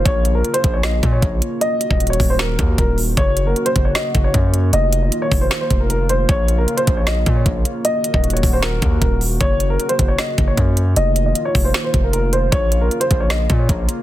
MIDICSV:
0, 0, Header, 1, 5, 480
1, 0, Start_track
1, 0, Key_signature, -5, "minor"
1, 0, Tempo, 389610
1, 68, Time_signature, 4, 2, 24, 8
1, 17279, End_track
2, 0, Start_track
2, 0, Title_t, "Grand piano"
2, 0, Program_c, 0, 0
2, 65, Note_on_c, 0, 73, 106
2, 405, Note_off_c, 0, 73, 0
2, 429, Note_on_c, 0, 70, 79
2, 656, Note_off_c, 0, 70, 0
2, 661, Note_on_c, 0, 72, 94
2, 892, Note_off_c, 0, 72, 0
2, 907, Note_on_c, 0, 73, 78
2, 1021, Note_off_c, 0, 73, 0
2, 1029, Note_on_c, 0, 75, 89
2, 1367, Note_off_c, 0, 75, 0
2, 1386, Note_on_c, 0, 73, 75
2, 1951, Note_off_c, 0, 73, 0
2, 1986, Note_on_c, 0, 75, 110
2, 2325, Note_off_c, 0, 75, 0
2, 2352, Note_on_c, 0, 75, 82
2, 2578, Note_off_c, 0, 75, 0
2, 2587, Note_on_c, 0, 73, 84
2, 2815, Note_off_c, 0, 73, 0
2, 2833, Note_on_c, 0, 72, 87
2, 2944, Note_off_c, 0, 72, 0
2, 2947, Note_on_c, 0, 70, 94
2, 3399, Note_off_c, 0, 70, 0
2, 3432, Note_on_c, 0, 70, 78
2, 3658, Note_off_c, 0, 70, 0
2, 3909, Note_on_c, 0, 73, 113
2, 4247, Note_off_c, 0, 73, 0
2, 4272, Note_on_c, 0, 70, 82
2, 4498, Note_off_c, 0, 70, 0
2, 4504, Note_on_c, 0, 72, 96
2, 4734, Note_off_c, 0, 72, 0
2, 4742, Note_on_c, 0, 73, 81
2, 4859, Note_off_c, 0, 73, 0
2, 4868, Note_on_c, 0, 75, 90
2, 5206, Note_off_c, 0, 75, 0
2, 5227, Note_on_c, 0, 73, 82
2, 5791, Note_off_c, 0, 73, 0
2, 5830, Note_on_c, 0, 75, 104
2, 6168, Note_off_c, 0, 75, 0
2, 6192, Note_on_c, 0, 75, 69
2, 6418, Note_off_c, 0, 75, 0
2, 6431, Note_on_c, 0, 73, 88
2, 6657, Note_off_c, 0, 73, 0
2, 6668, Note_on_c, 0, 72, 81
2, 6889, Note_off_c, 0, 72, 0
2, 6908, Note_on_c, 0, 72, 81
2, 7136, Note_off_c, 0, 72, 0
2, 7150, Note_on_c, 0, 70, 70
2, 7249, Note_off_c, 0, 70, 0
2, 7268, Note_on_c, 0, 70, 85
2, 7496, Note_off_c, 0, 70, 0
2, 7509, Note_on_c, 0, 72, 88
2, 7737, Note_off_c, 0, 72, 0
2, 7746, Note_on_c, 0, 73, 107
2, 8085, Note_off_c, 0, 73, 0
2, 8108, Note_on_c, 0, 70, 82
2, 8336, Note_off_c, 0, 70, 0
2, 8342, Note_on_c, 0, 72, 95
2, 8573, Note_off_c, 0, 72, 0
2, 8588, Note_on_c, 0, 73, 80
2, 8702, Note_off_c, 0, 73, 0
2, 8710, Note_on_c, 0, 75, 94
2, 9048, Note_off_c, 0, 75, 0
2, 9067, Note_on_c, 0, 73, 74
2, 9631, Note_off_c, 0, 73, 0
2, 9668, Note_on_c, 0, 75, 113
2, 10006, Note_off_c, 0, 75, 0
2, 10032, Note_on_c, 0, 75, 84
2, 10258, Note_off_c, 0, 75, 0
2, 10267, Note_on_c, 0, 73, 82
2, 10495, Note_off_c, 0, 73, 0
2, 10511, Note_on_c, 0, 72, 88
2, 10624, Note_off_c, 0, 72, 0
2, 10627, Note_on_c, 0, 70, 94
2, 11079, Note_off_c, 0, 70, 0
2, 11111, Note_on_c, 0, 70, 82
2, 11337, Note_off_c, 0, 70, 0
2, 11588, Note_on_c, 0, 73, 113
2, 11927, Note_off_c, 0, 73, 0
2, 11952, Note_on_c, 0, 70, 85
2, 12178, Note_off_c, 0, 70, 0
2, 12184, Note_on_c, 0, 72, 93
2, 12414, Note_off_c, 0, 72, 0
2, 12423, Note_on_c, 0, 73, 82
2, 12539, Note_off_c, 0, 73, 0
2, 12548, Note_on_c, 0, 75, 92
2, 12886, Note_off_c, 0, 75, 0
2, 12906, Note_on_c, 0, 73, 81
2, 13471, Note_off_c, 0, 73, 0
2, 13510, Note_on_c, 0, 75, 101
2, 13847, Note_off_c, 0, 75, 0
2, 13871, Note_on_c, 0, 75, 68
2, 14097, Note_off_c, 0, 75, 0
2, 14111, Note_on_c, 0, 73, 87
2, 14337, Note_off_c, 0, 73, 0
2, 14348, Note_on_c, 0, 72, 81
2, 14571, Note_off_c, 0, 72, 0
2, 14590, Note_on_c, 0, 72, 79
2, 14817, Note_off_c, 0, 72, 0
2, 14831, Note_on_c, 0, 70, 72
2, 14930, Note_off_c, 0, 70, 0
2, 14948, Note_on_c, 0, 70, 83
2, 15176, Note_off_c, 0, 70, 0
2, 15188, Note_on_c, 0, 72, 83
2, 15416, Note_off_c, 0, 72, 0
2, 15425, Note_on_c, 0, 73, 114
2, 15765, Note_off_c, 0, 73, 0
2, 15787, Note_on_c, 0, 70, 80
2, 16016, Note_off_c, 0, 70, 0
2, 16021, Note_on_c, 0, 72, 92
2, 16252, Note_off_c, 0, 72, 0
2, 16267, Note_on_c, 0, 73, 81
2, 16382, Note_off_c, 0, 73, 0
2, 16388, Note_on_c, 0, 75, 91
2, 16727, Note_off_c, 0, 75, 0
2, 16744, Note_on_c, 0, 73, 73
2, 17279, Note_off_c, 0, 73, 0
2, 17279, End_track
3, 0, Start_track
3, 0, Title_t, "Analog synth pad"
3, 0, Program_c, 1, 89
3, 0, Note_on_c, 1, 58, 72
3, 0, Note_on_c, 1, 65, 90
3, 69, Note_on_c, 1, 49, 80
3, 1949, Note_off_c, 1, 65, 0
3, 1969, Note_off_c, 1, 49, 0
3, 1987, Note_on_c, 1, 66, 90
3, 1988, Note_on_c, 1, 51, 78
3, 3858, Note_off_c, 1, 58, 0
3, 3889, Note_off_c, 1, 51, 0
3, 3889, Note_off_c, 1, 66, 0
3, 3908, Note_on_c, 1, 66, 85
3, 3909, Note_on_c, 1, 49, 78
3, 3909, Note_on_c, 1, 58, 73
3, 5809, Note_off_c, 1, 49, 0
3, 5809, Note_off_c, 1, 66, 0
3, 5828, Note_on_c, 1, 51, 79
3, 5828, Note_on_c, 1, 65, 88
3, 7729, Note_off_c, 1, 51, 0
3, 7746, Note_on_c, 1, 49, 79
3, 9630, Note_off_c, 1, 65, 0
3, 9648, Note_off_c, 1, 49, 0
3, 9669, Note_on_c, 1, 51, 79
3, 9669, Note_on_c, 1, 66, 88
3, 11569, Note_off_c, 1, 51, 0
3, 11570, Note_off_c, 1, 66, 0
3, 11588, Note_on_c, 1, 49, 81
3, 11588, Note_on_c, 1, 66, 86
3, 13489, Note_off_c, 1, 49, 0
3, 13489, Note_off_c, 1, 66, 0
3, 13508, Note_on_c, 1, 51, 77
3, 13508, Note_on_c, 1, 65, 87
3, 15379, Note_off_c, 1, 58, 0
3, 15409, Note_off_c, 1, 51, 0
3, 15428, Note_on_c, 1, 49, 77
3, 15428, Note_on_c, 1, 58, 73
3, 17279, Note_off_c, 1, 49, 0
3, 17279, Note_off_c, 1, 58, 0
3, 17279, Note_off_c, 1, 65, 0
3, 17279, End_track
4, 0, Start_track
4, 0, Title_t, "808-style bass"
4, 0, Program_c, 2, 38
4, 68, Note_on_c, 2, 34, 110
4, 529, Note_off_c, 2, 34, 0
4, 789, Note_on_c, 2, 34, 109
4, 1249, Note_off_c, 2, 34, 0
4, 1269, Note_on_c, 2, 46, 106
4, 1499, Note_off_c, 2, 46, 0
4, 1508, Note_on_c, 2, 34, 108
4, 1739, Note_off_c, 2, 34, 0
4, 2348, Note_on_c, 2, 27, 106
4, 2694, Note_off_c, 2, 27, 0
4, 2709, Note_on_c, 2, 27, 110
4, 3169, Note_off_c, 2, 27, 0
4, 3189, Note_on_c, 2, 39, 106
4, 3419, Note_off_c, 2, 39, 0
4, 3429, Note_on_c, 2, 27, 108
4, 3889, Note_off_c, 2, 27, 0
4, 3908, Note_on_c, 2, 30, 113
4, 4369, Note_off_c, 2, 30, 0
4, 4629, Note_on_c, 2, 30, 111
4, 4859, Note_off_c, 2, 30, 0
4, 5109, Note_on_c, 2, 30, 105
4, 5339, Note_off_c, 2, 30, 0
4, 5349, Note_on_c, 2, 42, 107
4, 5809, Note_off_c, 2, 42, 0
4, 5828, Note_on_c, 2, 29, 115
4, 6289, Note_off_c, 2, 29, 0
4, 6548, Note_on_c, 2, 29, 108
4, 6779, Note_off_c, 2, 29, 0
4, 7029, Note_on_c, 2, 29, 105
4, 7720, Note_off_c, 2, 29, 0
4, 7748, Note_on_c, 2, 34, 110
4, 8209, Note_off_c, 2, 34, 0
4, 8469, Note_on_c, 2, 34, 109
4, 8929, Note_off_c, 2, 34, 0
4, 8950, Note_on_c, 2, 46, 103
4, 9179, Note_off_c, 2, 46, 0
4, 9189, Note_on_c, 2, 34, 111
4, 9419, Note_off_c, 2, 34, 0
4, 10028, Note_on_c, 2, 27, 106
4, 10373, Note_off_c, 2, 27, 0
4, 10389, Note_on_c, 2, 27, 112
4, 10849, Note_off_c, 2, 27, 0
4, 10869, Note_on_c, 2, 39, 107
4, 11099, Note_off_c, 2, 39, 0
4, 11108, Note_on_c, 2, 27, 110
4, 11569, Note_off_c, 2, 27, 0
4, 11588, Note_on_c, 2, 30, 112
4, 12049, Note_off_c, 2, 30, 0
4, 12309, Note_on_c, 2, 30, 110
4, 12539, Note_off_c, 2, 30, 0
4, 12789, Note_on_c, 2, 30, 103
4, 13019, Note_off_c, 2, 30, 0
4, 13029, Note_on_c, 2, 42, 109
4, 13489, Note_off_c, 2, 42, 0
4, 13508, Note_on_c, 2, 29, 114
4, 13969, Note_off_c, 2, 29, 0
4, 14229, Note_on_c, 2, 29, 110
4, 14459, Note_off_c, 2, 29, 0
4, 14709, Note_on_c, 2, 29, 107
4, 15400, Note_off_c, 2, 29, 0
4, 15428, Note_on_c, 2, 34, 113
4, 15889, Note_off_c, 2, 34, 0
4, 16148, Note_on_c, 2, 34, 111
4, 16609, Note_off_c, 2, 34, 0
4, 16629, Note_on_c, 2, 46, 104
4, 16859, Note_off_c, 2, 46, 0
4, 16868, Note_on_c, 2, 34, 112
4, 17098, Note_off_c, 2, 34, 0
4, 17279, End_track
5, 0, Start_track
5, 0, Title_t, "Drums"
5, 68, Note_on_c, 9, 36, 108
5, 68, Note_on_c, 9, 42, 86
5, 191, Note_off_c, 9, 36, 0
5, 191, Note_off_c, 9, 42, 0
5, 308, Note_on_c, 9, 42, 77
5, 431, Note_off_c, 9, 42, 0
5, 548, Note_on_c, 9, 42, 52
5, 668, Note_off_c, 9, 42, 0
5, 668, Note_on_c, 9, 42, 80
5, 788, Note_off_c, 9, 42, 0
5, 788, Note_on_c, 9, 42, 85
5, 789, Note_on_c, 9, 36, 93
5, 911, Note_off_c, 9, 42, 0
5, 912, Note_off_c, 9, 36, 0
5, 1027, Note_on_c, 9, 38, 114
5, 1028, Note_on_c, 9, 42, 83
5, 1151, Note_off_c, 9, 38, 0
5, 1151, Note_off_c, 9, 42, 0
5, 1268, Note_on_c, 9, 42, 74
5, 1269, Note_on_c, 9, 36, 98
5, 1391, Note_off_c, 9, 42, 0
5, 1392, Note_off_c, 9, 36, 0
5, 1508, Note_on_c, 9, 36, 98
5, 1508, Note_on_c, 9, 42, 78
5, 1631, Note_off_c, 9, 42, 0
5, 1632, Note_off_c, 9, 36, 0
5, 1748, Note_on_c, 9, 42, 83
5, 1871, Note_off_c, 9, 42, 0
5, 1988, Note_on_c, 9, 42, 87
5, 2111, Note_off_c, 9, 42, 0
5, 2228, Note_on_c, 9, 42, 80
5, 2348, Note_on_c, 9, 36, 86
5, 2351, Note_off_c, 9, 42, 0
5, 2468, Note_on_c, 9, 42, 68
5, 2471, Note_off_c, 9, 36, 0
5, 2548, Note_off_c, 9, 42, 0
5, 2548, Note_on_c, 9, 42, 68
5, 2628, Note_off_c, 9, 42, 0
5, 2628, Note_on_c, 9, 42, 65
5, 2708, Note_on_c, 9, 46, 59
5, 2709, Note_on_c, 9, 36, 95
5, 2751, Note_off_c, 9, 42, 0
5, 2832, Note_off_c, 9, 36, 0
5, 2832, Note_off_c, 9, 46, 0
5, 2947, Note_on_c, 9, 38, 116
5, 2948, Note_on_c, 9, 42, 86
5, 3070, Note_off_c, 9, 38, 0
5, 3071, Note_off_c, 9, 42, 0
5, 3188, Note_on_c, 9, 42, 73
5, 3189, Note_on_c, 9, 36, 100
5, 3311, Note_off_c, 9, 42, 0
5, 3312, Note_off_c, 9, 36, 0
5, 3428, Note_on_c, 9, 42, 79
5, 3429, Note_on_c, 9, 36, 100
5, 3551, Note_off_c, 9, 42, 0
5, 3552, Note_off_c, 9, 36, 0
5, 3669, Note_on_c, 9, 46, 60
5, 3792, Note_off_c, 9, 46, 0
5, 3908, Note_on_c, 9, 36, 107
5, 3908, Note_on_c, 9, 42, 86
5, 4031, Note_off_c, 9, 42, 0
5, 4032, Note_off_c, 9, 36, 0
5, 4148, Note_on_c, 9, 42, 77
5, 4271, Note_off_c, 9, 42, 0
5, 4388, Note_on_c, 9, 42, 49
5, 4508, Note_off_c, 9, 42, 0
5, 4508, Note_on_c, 9, 42, 82
5, 4628, Note_off_c, 9, 42, 0
5, 4628, Note_on_c, 9, 42, 87
5, 4629, Note_on_c, 9, 36, 92
5, 4751, Note_off_c, 9, 42, 0
5, 4752, Note_off_c, 9, 36, 0
5, 4867, Note_on_c, 9, 38, 115
5, 4868, Note_on_c, 9, 42, 84
5, 4990, Note_off_c, 9, 38, 0
5, 4991, Note_off_c, 9, 42, 0
5, 5108, Note_on_c, 9, 42, 75
5, 5109, Note_on_c, 9, 36, 96
5, 5231, Note_off_c, 9, 42, 0
5, 5232, Note_off_c, 9, 36, 0
5, 5348, Note_on_c, 9, 42, 79
5, 5349, Note_on_c, 9, 36, 99
5, 5471, Note_off_c, 9, 42, 0
5, 5472, Note_off_c, 9, 36, 0
5, 5589, Note_on_c, 9, 42, 85
5, 5712, Note_off_c, 9, 42, 0
5, 5828, Note_on_c, 9, 42, 86
5, 5951, Note_off_c, 9, 42, 0
5, 6068, Note_on_c, 9, 42, 84
5, 6191, Note_off_c, 9, 42, 0
5, 6308, Note_on_c, 9, 42, 82
5, 6431, Note_off_c, 9, 42, 0
5, 6548, Note_on_c, 9, 46, 63
5, 6549, Note_on_c, 9, 36, 94
5, 6671, Note_off_c, 9, 46, 0
5, 6672, Note_off_c, 9, 36, 0
5, 6787, Note_on_c, 9, 38, 121
5, 6788, Note_on_c, 9, 42, 84
5, 6910, Note_off_c, 9, 38, 0
5, 6911, Note_off_c, 9, 42, 0
5, 7028, Note_on_c, 9, 42, 76
5, 7029, Note_on_c, 9, 36, 99
5, 7151, Note_off_c, 9, 42, 0
5, 7152, Note_off_c, 9, 36, 0
5, 7268, Note_on_c, 9, 42, 78
5, 7391, Note_off_c, 9, 42, 0
5, 7508, Note_on_c, 9, 42, 83
5, 7631, Note_off_c, 9, 42, 0
5, 7748, Note_on_c, 9, 36, 109
5, 7748, Note_on_c, 9, 42, 86
5, 7871, Note_off_c, 9, 36, 0
5, 7871, Note_off_c, 9, 42, 0
5, 7988, Note_on_c, 9, 42, 76
5, 8111, Note_off_c, 9, 42, 0
5, 8228, Note_on_c, 9, 42, 51
5, 8348, Note_off_c, 9, 42, 0
5, 8348, Note_on_c, 9, 42, 80
5, 8467, Note_off_c, 9, 42, 0
5, 8467, Note_on_c, 9, 42, 84
5, 8469, Note_on_c, 9, 36, 94
5, 8591, Note_off_c, 9, 42, 0
5, 8592, Note_off_c, 9, 36, 0
5, 8707, Note_on_c, 9, 38, 116
5, 8708, Note_on_c, 9, 42, 84
5, 8830, Note_off_c, 9, 38, 0
5, 8831, Note_off_c, 9, 42, 0
5, 8948, Note_on_c, 9, 42, 75
5, 8949, Note_on_c, 9, 36, 97
5, 9071, Note_off_c, 9, 42, 0
5, 9072, Note_off_c, 9, 36, 0
5, 9188, Note_on_c, 9, 42, 79
5, 9189, Note_on_c, 9, 36, 100
5, 9311, Note_off_c, 9, 42, 0
5, 9312, Note_off_c, 9, 36, 0
5, 9428, Note_on_c, 9, 42, 81
5, 9551, Note_off_c, 9, 42, 0
5, 9668, Note_on_c, 9, 42, 87
5, 9791, Note_off_c, 9, 42, 0
5, 9908, Note_on_c, 9, 42, 83
5, 10028, Note_on_c, 9, 36, 86
5, 10031, Note_off_c, 9, 42, 0
5, 10148, Note_on_c, 9, 42, 70
5, 10151, Note_off_c, 9, 36, 0
5, 10228, Note_off_c, 9, 42, 0
5, 10228, Note_on_c, 9, 42, 68
5, 10308, Note_off_c, 9, 42, 0
5, 10308, Note_on_c, 9, 42, 65
5, 10388, Note_on_c, 9, 46, 62
5, 10389, Note_on_c, 9, 36, 98
5, 10431, Note_off_c, 9, 42, 0
5, 10511, Note_off_c, 9, 46, 0
5, 10512, Note_off_c, 9, 36, 0
5, 10626, Note_on_c, 9, 38, 117
5, 10627, Note_on_c, 9, 42, 80
5, 10750, Note_off_c, 9, 38, 0
5, 10750, Note_off_c, 9, 42, 0
5, 10867, Note_on_c, 9, 42, 75
5, 10869, Note_on_c, 9, 36, 100
5, 10990, Note_off_c, 9, 42, 0
5, 10992, Note_off_c, 9, 36, 0
5, 11108, Note_on_c, 9, 36, 101
5, 11108, Note_on_c, 9, 42, 82
5, 11231, Note_off_c, 9, 42, 0
5, 11232, Note_off_c, 9, 36, 0
5, 11348, Note_on_c, 9, 46, 62
5, 11471, Note_off_c, 9, 46, 0
5, 11588, Note_on_c, 9, 36, 106
5, 11588, Note_on_c, 9, 42, 88
5, 11711, Note_off_c, 9, 36, 0
5, 11711, Note_off_c, 9, 42, 0
5, 11828, Note_on_c, 9, 42, 77
5, 11952, Note_off_c, 9, 42, 0
5, 12068, Note_on_c, 9, 42, 51
5, 12188, Note_off_c, 9, 42, 0
5, 12188, Note_on_c, 9, 42, 78
5, 12308, Note_off_c, 9, 42, 0
5, 12308, Note_on_c, 9, 42, 86
5, 12309, Note_on_c, 9, 36, 94
5, 12432, Note_off_c, 9, 36, 0
5, 12432, Note_off_c, 9, 42, 0
5, 12548, Note_on_c, 9, 38, 120
5, 12549, Note_on_c, 9, 42, 86
5, 12671, Note_off_c, 9, 38, 0
5, 12672, Note_off_c, 9, 42, 0
5, 12788, Note_on_c, 9, 42, 74
5, 12789, Note_on_c, 9, 36, 95
5, 12911, Note_off_c, 9, 42, 0
5, 12912, Note_off_c, 9, 36, 0
5, 13028, Note_on_c, 9, 42, 80
5, 13029, Note_on_c, 9, 36, 98
5, 13151, Note_off_c, 9, 42, 0
5, 13152, Note_off_c, 9, 36, 0
5, 13268, Note_on_c, 9, 42, 82
5, 13391, Note_off_c, 9, 42, 0
5, 13508, Note_on_c, 9, 42, 87
5, 13631, Note_off_c, 9, 42, 0
5, 13748, Note_on_c, 9, 42, 83
5, 13871, Note_off_c, 9, 42, 0
5, 13988, Note_on_c, 9, 42, 81
5, 14112, Note_off_c, 9, 42, 0
5, 14228, Note_on_c, 9, 46, 62
5, 14229, Note_on_c, 9, 36, 95
5, 14351, Note_off_c, 9, 46, 0
5, 14352, Note_off_c, 9, 36, 0
5, 14468, Note_on_c, 9, 38, 118
5, 14468, Note_on_c, 9, 42, 84
5, 14591, Note_off_c, 9, 38, 0
5, 14592, Note_off_c, 9, 42, 0
5, 14708, Note_on_c, 9, 42, 74
5, 14709, Note_on_c, 9, 36, 98
5, 14831, Note_off_c, 9, 42, 0
5, 14832, Note_off_c, 9, 36, 0
5, 14948, Note_on_c, 9, 42, 79
5, 15071, Note_off_c, 9, 42, 0
5, 15188, Note_on_c, 9, 42, 86
5, 15311, Note_off_c, 9, 42, 0
5, 15428, Note_on_c, 9, 36, 106
5, 15428, Note_on_c, 9, 42, 88
5, 15551, Note_off_c, 9, 36, 0
5, 15551, Note_off_c, 9, 42, 0
5, 15668, Note_on_c, 9, 42, 78
5, 15791, Note_off_c, 9, 42, 0
5, 15908, Note_on_c, 9, 42, 49
5, 16028, Note_off_c, 9, 42, 0
5, 16028, Note_on_c, 9, 42, 80
5, 16147, Note_off_c, 9, 42, 0
5, 16147, Note_on_c, 9, 42, 84
5, 16148, Note_on_c, 9, 36, 96
5, 16270, Note_off_c, 9, 42, 0
5, 16272, Note_off_c, 9, 36, 0
5, 16387, Note_on_c, 9, 38, 122
5, 16387, Note_on_c, 9, 42, 84
5, 16510, Note_off_c, 9, 38, 0
5, 16511, Note_off_c, 9, 42, 0
5, 16627, Note_on_c, 9, 42, 72
5, 16629, Note_on_c, 9, 36, 101
5, 16751, Note_off_c, 9, 42, 0
5, 16752, Note_off_c, 9, 36, 0
5, 16867, Note_on_c, 9, 42, 79
5, 16868, Note_on_c, 9, 36, 98
5, 16991, Note_off_c, 9, 36, 0
5, 16991, Note_off_c, 9, 42, 0
5, 17108, Note_on_c, 9, 42, 83
5, 17231, Note_off_c, 9, 42, 0
5, 17279, End_track
0, 0, End_of_file